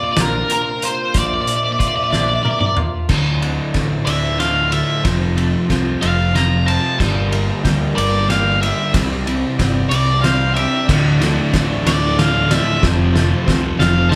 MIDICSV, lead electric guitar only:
0, 0, Header, 1, 2, 480
1, 0, Start_track
1, 0, Key_signature, -1, "minor"
1, 0, Tempo, 648649
1, 852, Time_signature, 6, 3, 24, 8
1, 10473, End_track
2, 0, Start_track
2, 0, Title_t, "Lead electric guitar"
2, 0, Program_c, 0, 29
2, 34, Note_on_c, 0, 74, 74
2, 88, Note_off_c, 0, 74, 0
2, 91, Note_on_c, 0, 74, 77
2, 149, Note_off_c, 0, 74, 0
2, 150, Note_on_c, 0, 70, 87
2, 381, Note_off_c, 0, 70, 0
2, 390, Note_on_c, 0, 70, 80
2, 627, Note_off_c, 0, 70, 0
2, 630, Note_on_c, 0, 72, 86
2, 868, Note_off_c, 0, 72, 0
2, 868, Note_on_c, 0, 74, 90
2, 927, Note_off_c, 0, 74, 0
2, 937, Note_on_c, 0, 74, 58
2, 989, Note_off_c, 0, 74, 0
2, 992, Note_on_c, 0, 74, 75
2, 1044, Note_off_c, 0, 74, 0
2, 1047, Note_on_c, 0, 74, 63
2, 1097, Note_off_c, 0, 74, 0
2, 1100, Note_on_c, 0, 74, 76
2, 1154, Note_off_c, 0, 74, 0
2, 1157, Note_on_c, 0, 74, 66
2, 1213, Note_off_c, 0, 74, 0
2, 1216, Note_on_c, 0, 74, 75
2, 1271, Note_off_c, 0, 74, 0
2, 1274, Note_on_c, 0, 74, 72
2, 1323, Note_off_c, 0, 74, 0
2, 1326, Note_on_c, 0, 74, 84
2, 1384, Note_off_c, 0, 74, 0
2, 1390, Note_on_c, 0, 74, 65
2, 1446, Note_off_c, 0, 74, 0
2, 1449, Note_on_c, 0, 74, 83
2, 1505, Note_off_c, 0, 74, 0
2, 1508, Note_on_c, 0, 74, 71
2, 1560, Note_off_c, 0, 74, 0
2, 1563, Note_on_c, 0, 74, 81
2, 1622, Note_off_c, 0, 74, 0
2, 1628, Note_on_c, 0, 74, 66
2, 1685, Note_off_c, 0, 74, 0
2, 1688, Note_on_c, 0, 74, 79
2, 1733, Note_off_c, 0, 74, 0
2, 1736, Note_on_c, 0, 74, 68
2, 1794, Note_off_c, 0, 74, 0
2, 1796, Note_on_c, 0, 74, 71
2, 1854, Note_off_c, 0, 74, 0
2, 1857, Note_on_c, 0, 74, 64
2, 1915, Note_off_c, 0, 74, 0
2, 1920, Note_on_c, 0, 74, 68
2, 1968, Note_off_c, 0, 74, 0
2, 1971, Note_on_c, 0, 74, 58
2, 2029, Note_off_c, 0, 74, 0
2, 3002, Note_on_c, 0, 76, 82
2, 3250, Note_off_c, 0, 76, 0
2, 3253, Note_on_c, 0, 77, 86
2, 3478, Note_off_c, 0, 77, 0
2, 3496, Note_on_c, 0, 76, 70
2, 3719, Note_off_c, 0, 76, 0
2, 4451, Note_on_c, 0, 77, 71
2, 4701, Note_on_c, 0, 82, 90
2, 4702, Note_off_c, 0, 77, 0
2, 4932, Note_off_c, 0, 82, 0
2, 4935, Note_on_c, 0, 81, 79
2, 5160, Note_off_c, 0, 81, 0
2, 5890, Note_on_c, 0, 74, 82
2, 6117, Note_off_c, 0, 74, 0
2, 6139, Note_on_c, 0, 77, 88
2, 6373, Note_off_c, 0, 77, 0
2, 6376, Note_on_c, 0, 76, 82
2, 6600, Note_off_c, 0, 76, 0
2, 7320, Note_on_c, 0, 74, 81
2, 7555, Note_off_c, 0, 74, 0
2, 7557, Note_on_c, 0, 77, 83
2, 7797, Note_off_c, 0, 77, 0
2, 7800, Note_on_c, 0, 76, 83
2, 8031, Note_off_c, 0, 76, 0
2, 8786, Note_on_c, 0, 74, 86
2, 9024, Note_off_c, 0, 74, 0
2, 9027, Note_on_c, 0, 77, 97
2, 9268, Note_off_c, 0, 77, 0
2, 9282, Note_on_c, 0, 76, 84
2, 9492, Note_off_c, 0, 76, 0
2, 10209, Note_on_c, 0, 77, 88
2, 10428, Note_on_c, 0, 81, 100
2, 10457, Note_off_c, 0, 77, 0
2, 10473, Note_off_c, 0, 81, 0
2, 10473, End_track
0, 0, End_of_file